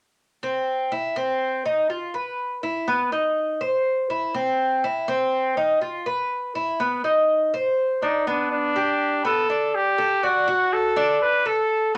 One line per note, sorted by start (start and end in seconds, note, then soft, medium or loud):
0.43 0.90 C4 medium
0.92 1.16 E4 medium
1.16 1.64 C4 medium
1.66 1.89 D#4 medium
1.90 2.14 F4 medium
2.14 2.62 B4 medium
2.63 2.87 E4 medium
2.88 3.12 B3 medium
3.12 3.60 D#4 medium
3.61 4.09 C5 medium
4.10 4.34 E4 medium
4.35 4.82 C4 medium
4.84 5.08 E4 medium
5.08 5.56 C4 medium
5.57 5.81 D#4 medium
5.81 6.05 F4 medium
6.06 6.54 B4 medium
6.55 6.79 E4 medium
6.80 7.04 B3 medium
7.04 7.52 D#4 medium
7.54 8.01 C5 medium
8.02 8.26 D4 medium
8.02 8.29 D#4 medium
8.27 8.75 B3 medium
8.27 8.51 D4 medium
8.51 9.21 D4 medium
8.76 9.23 G4 medium
9.25 9.49 B3 medium
9.25 9.76 A4 medium
9.50 9.97 D4 medium
9.75 10.25 G4 medium
9.98 10.22 A4 medium
10.23 10.74 F#4 medium
10.23 10.47 D5 medium
10.48 10.95 F#4 medium
10.73 11.21 A4 medium
10.96 11.44 D4 medium
11.22 11.48 B4 medium
11.46 11.93 A4 medium
11.46 11.94 A4 loud